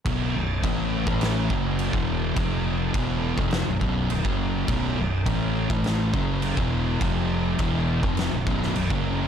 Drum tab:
CC |x---x---x---x---|x---x---x---x---|x---x---x---x---|x---x---x---x---|
SD |--------o-------|--------o-------|--------o-------|--------o--o----|
BD |o---o--o--o--o--|o---o--o--o--o--|o---o--o--o--o--|o---o--o--o--o--|